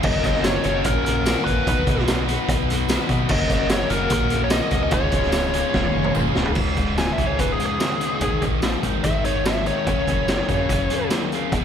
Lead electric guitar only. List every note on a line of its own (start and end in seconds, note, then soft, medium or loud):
0.05 0.25 D#5 loud
0.26 0.44 D#5 loud
0.45 0.64 C#5 loud
0.66 0.86 C#5 loud
0.86 1.04 A#4 loud
1.05 1.44 A#4 medium
1.45 2.03 B4 medium
3.31 3.71 D#5 loud
3.72 3.92 C#5 loud
3.90 4.12 A#4 medium
4.13 4.40 A#4 loud
4.44 4.51 C#5 medium
4.51 4.82 D#5 loud
4.83 4.92 D#5 loud
4.94 6.12 C#5 loud
6.98 7.11 G#5 loud
7.12 7.25 E5 medium
7.26 7.40 C#5 medium
7.40 7.53 B4 medium
7.52 7.65 G#4 medium
7.66 8.46 G#4 medium
9.04 9.24 E5 loud
9.25 9.45 C#5 medium
9.47 9.66 E5 medium
9.67 9.87 C#5 medium
9.89 11.09 C#5 loud